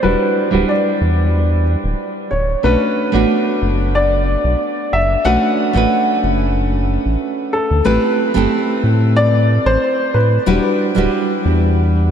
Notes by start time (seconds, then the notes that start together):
0.03 E1 G3 D4 E4 F#4 B4
0.51 D1 G3 D4 E4 F#4 B4
0.69 D5
1.01 E2
1.84 D1
2.31 D1 C#5
2.63 B1 A3 C#4 D4 F#4 B4
3.12 A1 A3 B3 D4 F#4 B4
3.62 F#1
3.95 D5
4.44 B1
4.93 F#1 E5
5.25 B1 A3 C#4 D4 F#4 B4 F#5
5.73 A1 A3 C#4 D4 F#4 B4
6.24 F#1
7.06 A1
7.53 A4
7.71 D2
7.85 A1 A3 C4 E4 G4 B4
8.34 G1 A3 C4 E4 G4 A4
8.84 A2
9.17 D5
9.66 A1 C5
10.14 A2 B4
10.46 E1 G3 D4 E4 F#4 B4
10.95 D1 G3 D4 E4 F#4 B4
11.45 E2